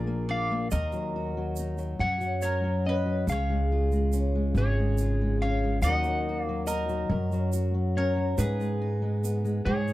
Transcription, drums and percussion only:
0.71 shaker medium
0.92 shaker soft
1.56 shaker medium
1.78 shaker soft
2.21 shaker soft
2.42 shaker medium
3.28 shaker medium
3.92 shaker soft
4.13 shaker medium
4.55 shaker soft
4.98 shaker medium
5.82 shaker medium
6.04 shaker soft
6.67 shaker loud
6.89 shaker soft
7.32 shaker soft
7.53 shaker loud
8.38 shaker loud
8.61 shaker soft
9.24 shaker loud
9.46 shaker soft
9.88 shaker soft

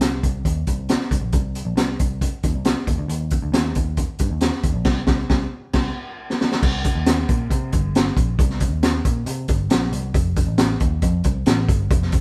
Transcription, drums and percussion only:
0.01 snare medium
0.01 closed hi-hat medium
0.23 kick medium
0.23 closed hi-hat medium
0.45 kick medium
0.45 closed hi-hat medium
0.67 kick medium
0.67 closed hi-hat medium
0.89 snare loud
0.89 closed hi-hat medium
1.01 snare soft
1.11 kick medium
1.11 closed hi-hat medium
1.33 kick loud
1.33 closed hi-hat medium
1.55 closed hi-hat medium
1.77 snare loud
1.77 closed hi-hat medium
2.00 kick loud
2.00 closed hi-hat medium
2.21 kick medium
2.21 closed hi-hat medium
2.43 kick medium
2.43 closed hi-hat medium
2.65 snare loud
2.65 closed hi-hat medium
2.87 kick medium
2.87 closed hi-hat medium
3.09 closed hi-hat medium
3.30 kick medium
3.30 closed hi-hat medium
3.54 snare loud
3.54 closed hi-hat medium
3.75 kick medium
3.75 closed hi-hat medium
3.97 kick medium
3.97 closed hi-hat medium
4.19 kick medium
4.19 closed hi-hat medium
4.41 snare loud
4.41 closed hi-hat medium
4.52 snare soft
4.63 kick medium
4.63 closed hi-hat medium
4.85 kick loud
4.85 snare loud
4.85 crash medium
5.07 kick loud
5.07 snare loud
5.30 kick loud
5.30 snare medium
5.73 kick loud
5.73 snare loud
5.73 crash medium
6.30 snare medium
6.41 snare medium
6.52 snare medium
6.63 kick loud
6.63 crash loud
6.85 kick medium
6.85 closed hi-hat medium
7.06 snare loud
7.06 closed hi-hat medium
7.29 kick loud
7.29 closed hi-hat medium
7.51 kick medium
7.51 closed hi-hat medium
7.72 kick medium
7.72 closed hi-hat medium
7.95 snare loud
7.95 closed hi-hat medium
8.17 kick loud
8.17 closed hi-hat medium
8.39 kick loud
8.39 closed hi-hat medium
8.50 snare soft
8.60 kick medium
8.60 closed hi-hat medium
8.83 snare loud
8.83 closed hi-hat medium
9.05 kick loud
9.05 closed hi-hat medium
9.26 closed hi-hat medium
9.48 kick loud
9.48 closed hi-hat medium
9.70 snare loud
9.70 closed hi-hat medium
9.93 closed hi-hat medium
10.14 kick loud
10.14 closed hi-hat medium
10.36 kick medium
10.36 closed hi-hat medium
10.58 snare loud
10.58 closed hi-hat medium
10.80 kick loud
10.80 closed hi-hat medium
11.02 kick medium
11.02 closed hi-hat medium
11.24 kick medium
11.24 closed hi-hat medium
11.46 snare loud
11.46 closed hi-hat medium
11.69 kick loud
11.69 closed hi-hat medium
11.90 kick loud
11.90 closed hi-hat medium
12.02 snare soft
12.12 kick loud
12.12 closed hi-hat medium

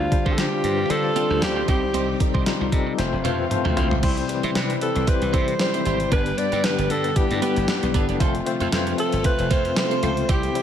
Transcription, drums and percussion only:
0.12 kick medium
0.12 closed hi-hat medium
0.26 kick medium
0.38 snare loud
0.38 closed hi-hat loud
0.64 closed hi-hat medium
0.90 closed hi-hat medium
1.16 closed hi-hat medium
1.42 snare loud
1.42 closed hi-hat medium
1.68 kick loud
1.68 closed hi-hat medium
1.94 closed hi-hat medium
2.20 kick medium
2.20 closed hi-hat medium
2.35 kick medium
2.46 snare medium
2.46 closed hi-hat medium
2.72 kick medium
2.72 closed hi-hat medium
2.98 snare medium
2.98 closed hi-hat medium
3.25 closed hi-hat medium
3.25 high tom medium
3.51 closed hi-hat medium
3.51 mid tom medium
3.65 mid tom medium
3.77 closed hi-hat medium
3.77 floor tom medium
3.91 floor tom medium
4.03 kick loud
4.03 closed hi-hat medium
4.03 crash medium
4.17 closed hi-hat soft
4.29 closed hi-hat medium
4.43 closed hi-hat soft
4.55 snare medium
4.55 closed hi-hat medium
4.70 closed hi-hat medium
4.81 closed hi-hat medium
4.96 closed hi-hat medium
5.07 kick medium
5.07 closed hi-hat medium
5.22 closed hi-hat soft
5.34 kick medium
5.34 closed hi-hat medium
5.48 closed hi-hat soft
5.59 snare loud
5.59 closed hi-hat medium
5.74 closed hi-hat medium
5.85 closed hi-hat medium
6.00 closed hi-hat soft
6.12 kick loud
6.12 closed hi-hat medium
6.26 closed hi-hat soft
6.38 closed hi-hat medium
6.52 closed hi-hat medium
6.64 snare loud
6.64 closed hi-hat loud
6.79 closed hi-hat medium
6.90 closed hi-hat medium
7.04 closed hi-hat medium
7.16 kick medium
7.16 closed hi-hat medium
7.31 closed hi-hat soft
7.42 closed hi-hat medium
7.56 closed hi-hat soft
7.68 snare loud
7.68 closed hi-hat medium
7.83 closed hi-hat medium
7.94 kick medium
7.94 closed hi-hat medium
8.09 closed hi-hat soft
8.20 kick loud
8.20 closed hi-hat medium
8.35 closed hi-hat soft
8.46 closed hi-hat medium
8.60 closed hi-hat medium
8.72 snare loud
8.72 closed hi-hat loud
8.87 closed hi-hat medium
8.98 closed hi-hat medium
9.12 closed hi-hat medium
9.24 kick medium
9.24 closed hi-hat medium
9.39 closed hi-hat soft
9.51 kick medium
9.51 closed hi-hat medium
9.65 closed hi-hat soft
9.76 snare loud
9.76 closed hi-hat medium
9.91 closed hi-hat medium
10.03 closed hi-hat medium
10.17 closed hi-hat soft
10.29 kick loud
10.29 closed hi-hat medium
10.43 closed hi-hat soft
10.55 closed hi-hat medium

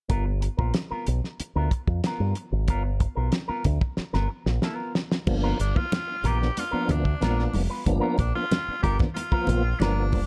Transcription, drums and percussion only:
0.10 kick loud
0.10 closed hi-hat medium
0.42 closed hi-hat medium
0.59 kick medium
0.74 snare medium
0.74 closed hi-hat medium
1.07 closed hi-hat medium
1.24 snare soft
1.40 closed hi-hat loud
1.71 kick medium
1.71 closed hi-hat medium
1.87 kick medium
2.04 snare loud
2.04 closed hi-hat medium
2.35 closed hi-hat medium
2.68 kick medium
2.68 closed hi-hat medium
3.00 kick medium
3.00 closed hi-hat medium
3.32 snare loud
3.32 closed hi-hat medium
3.64 kick medium
3.64 closed hi-hat medium
3.81 kick loud
3.97 snare medium
4.14 snare soft
4.46 snare medium
4.62 snare medium
4.95 snare medium
5.12 snare medium
5.27 kick loud
5.27 crash medium
5.27 muted conga medium
5.59 closed hi-hat medium
5.59 muted conga soft
5.76 kick medium
5.92 snare loud
5.92 closed hi-hat medium
5.92 high conga medium
6.24 closed hi-hat medium
6.24 low conga medium
6.42 snare soft
6.57 closed hi-hat loud
6.57 muted conga medium
6.89 closed hi-hat medium
6.89 low conga medium
7.05 kick medium
7.21 snare loud
7.21 closed hi-hat medium
7.21 high conga medium
7.39 snare soft
7.54 open hi-hat medium
7.54 high conga medium
7.86 kick medium
7.86 closed hi-hat medium
7.86 muted conga medium
8.18 kick medium
8.18 closed hi-hat medium
8.18 muted conga soft
8.51 snare loud
8.51 closed hi-hat medium
8.51 high conga medium
8.84 kick loud
8.84 closed hi-hat medium
8.99 kick loud
8.99 snare soft
8.99 low conga medium
9.16 closed hi-hat loud
9.16 muted conga medium
9.32 kick medium
9.47 closed hi-hat medium
9.47 low conga medium
9.80 snare loud
9.80 closed hi-hat loud
9.80 high conga medium
10.12 kick loud
10.12 open hi-hat medium
10.12 high conga medium

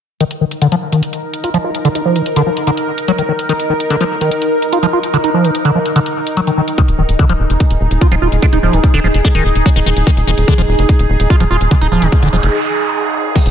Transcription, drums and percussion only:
0.20 closed hi-hat medium
0.31 closed hi-hat medium
0.51 closed hi-hat medium
0.62 closed hi-hat medium
0.72 closed hi-hat medium
0.92 closed hi-hat medium
1.03 closed hi-hat medium
1.13 closed hi-hat medium
1.34 closed hi-hat medium
1.44 closed hi-hat medium
1.54 closed hi-hat medium
1.75 closed hi-hat medium
1.85 closed hi-hat medium
1.95 closed hi-hat medium
2.16 closed hi-hat medium
2.26 closed hi-hat medium
2.36 closed hi-hat medium
2.57 closed hi-hat medium
2.67 closed hi-hat medium
2.77 closed hi-hat medium
2.98 closed hi-hat medium
3.08 closed hi-hat medium
3.18 closed hi-hat medium
3.39 closed hi-hat medium
3.49 closed hi-hat medium
3.60 closed hi-hat medium
3.80 closed hi-hat medium
3.90 closed hi-hat medium
4.01 closed hi-hat medium
4.21 closed hi-hat medium
4.31 closed hi-hat medium
4.42 closed hi-hat medium
4.62 closed hi-hat medium
4.73 closed hi-hat medium
4.83 closed hi-hat medium
5.03 closed hi-hat medium
5.14 closed hi-hat medium
5.24 closed hi-hat medium
5.44 closed hi-hat medium
5.55 closed hi-hat medium
5.65 closed hi-hat medium
5.86 closed hi-hat medium
5.96 closed hi-hat medium
6.06 closed hi-hat medium
6.27 closed hi-hat medium
6.37 closed hi-hat medium
6.47 closed hi-hat medium
6.68 closed hi-hat medium
6.78 kick loud
6.78 closed hi-hat medium
6.88 closed hi-hat medium
7.09 closed hi-hat medium
7.19 kick loud
7.19 closed hi-hat medium
7.29 closed hi-hat medium
7.50 closed hi-hat medium
7.60 kick loud
7.60 closed hi-hat medium
7.70 closed hi-hat medium
7.91 closed hi-hat medium
8.01 kick loud
8.01 closed hi-hat medium
8.12 closed hi-hat medium
8.32 closed hi-hat medium
8.42 kick loud
8.42 closed hi-hat medium
8.53 closed hi-hat medium
8.73 closed hi-hat medium
8.84 kick loud
8.84 closed hi-hat medium
8.94 closed hi-hat medium
9.14 closed hi-hat medium
9.25 kick loud
9.25 closed hi-hat medium
9.35 closed hi-hat medium
9.55 closed hi-hat medium
9.66 kick loud
9.66 closed hi-hat medium
9.76 closed hi-hat medium
9.97 closed hi-hat medium
10.07 kick loud
10.07 closed hi-hat medium
10.17 closed hi-hat medium
10.38 closed hi-hat medium
10.48 kick loud
10.48 closed hi-hat medium
10.58 closed hi-hat medium
10.79 closed hi-hat medium
10.89 kick loud
10.89 closed hi-hat medium
10.99 closed hi-hat medium
11.20 closed hi-hat medium
11.30 kick loud
11.30 closed hi-hat medium
11.40 closed hi-hat medium
11.61 closed hi-hat medium
11.71 kick loud
11.71 closed hi-hat medium
11.81 closed hi-hat medium
12.02 closed hi-hat medium
12.12 kick loud
12.12 closed hi-hat medium
12.23 closed hi-hat medium
12.43 closed hi-hat medium
13.36 kick loud
13.36 closed hi-hat medium
13.36 crash medium
13.46 closed hi-hat medium

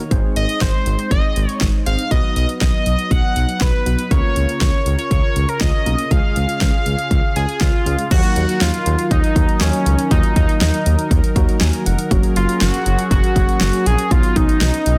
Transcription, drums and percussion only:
0.11 kick loud
0.11 closed hi-hat medium
0.36 closed hi-hat medium
0.49 closed hi-hat soft
0.61 kick loud
0.61 snare loud
0.61 closed hi-hat medium
0.86 closed hi-hat medium
0.99 closed hi-hat soft
1.11 kick loud
1.11 closed hi-hat medium
1.36 closed hi-hat medium
1.49 closed hi-hat soft
1.61 kick loud
1.61 snare loud
1.61 closed hi-hat medium
1.86 closed hi-hat medium
1.99 closed hi-hat medium
2.11 kick loud
2.11 closed hi-hat medium
2.36 closed hi-hat medium
2.49 closed hi-hat soft
2.61 kick loud
2.61 snare loud
2.61 closed hi-hat medium
2.86 closed hi-hat medium
2.99 closed hi-hat soft
3.11 kick loud
3.11 closed hi-hat medium
3.36 closed hi-hat medium
3.49 closed hi-hat soft
3.61 kick loud
3.61 snare loud
3.61 closed hi-hat medium
3.86 closed hi-hat medium
3.99 closed hi-hat medium
4.11 kick loud
4.11 closed hi-hat medium
4.36 closed hi-hat medium
4.49 closed hi-hat soft
4.61 kick loud
4.61 snare loud
4.61 closed hi-hat medium
4.86 closed hi-hat medium
4.99 closed hi-hat soft
5.11 kick loud
5.11 closed hi-hat medium
5.36 closed hi-hat medium
5.49 closed hi-hat soft
5.61 kick loud
5.61 snare loud
5.61 closed hi-hat medium
5.86 closed hi-hat medium
5.99 closed hi-hat medium
6.11 kick loud
6.11 closed hi-hat medium
6.36 closed hi-hat medium
6.49 closed hi-hat soft
6.61 kick loud
6.61 snare loud
6.61 closed hi-hat medium
6.86 closed hi-hat medium
6.99 closed hi-hat soft
7.11 kick loud
7.11 closed hi-hat medium
7.36 closed hi-hat medium
7.49 closed hi-hat soft
7.61 kick loud
7.61 snare loud
7.61 closed hi-hat medium
7.86 closed hi-hat medium
7.99 closed hi-hat medium
8.11 kick loud
8.11 closed hi-hat medium
8.11 crash loud
8.23 closed hi-hat medium
8.36 closed hi-hat medium
8.49 closed hi-hat medium
8.61 snare loud
8.61 closed hi-hat medium
8.74 closed hi-hat medium
8.86 closed hi-hat medium
8.99 closed hi-hat soft
9.11 kick medium
9.11 closed hi-hat medium
9.24 closed hi-hat medium
9.36 kick loud
9.36 closed hi-hat medium
9.49 closed hi-hat soft
9.61 snare loud
9.61 closed hi-hat medium
9.73 closed hi-hat medium
9.86 closed hi-hat medium
9.99 closed hi-hat medium
10.11 kick loud
10.11 closed hi-hat medium
10.23 closed hi-hat medium
10.36 kick loud
10.36 closed hi-hat medium
10.49 closed hi-hat medium
10.61 snare loud
10.61 closed hi-hat medium
10.74 closed hi-hat medium
10.86 closed hi-hat medium
10.99 closed hi-hat soft
11.11 kick medium
11.11 closed hi-hat medium
11.24 closed hi-hat medium
11.36 kick loud
11.36 closed hi-hat medium
11.49 closed hi-hat soft
11.61 snare loud
11.61 closed hi-hat medium
11.73 closed hi-hat medium
11.86 closed hi-hat medium
11.99 closed hi-hat medium
12.11 kick loud
12.11 closed hi-hat medium
12.23 closed hi-hat medium
12.36 closed hi-hat medium
12.49 closed hi-hat medium
12.61 snare loud
12.61 closed hi-hat medium
12.74 closed hi-hat medium
12.86 closed hi-hat medium
12.99 closed hi-hat soft
13.11 kick loud
13.11 closed hi-hat medium
13.24 closed hi-hat soft
13.36 kick loud
13.36 closed hi-hat medium
13.49 closed hi-hat soft
13.61 snare loud
13.61 closed hi-hat medium
13.73 closed hi-hat medium
13.86 closed hi-hat medium
13.99 closed hi-hat medium
14.11 kick loud
14.11 closed hi-hat medium
14.23 closed hi-hat medium
14.36 kick loud
14.36 closed hi-hat medium
14.49 closed hi-hat medium
14.61 snare loud
14.61 closed hi-hat medium
14.74 closed hi-hat medium
14.86 closed hi-hat medium

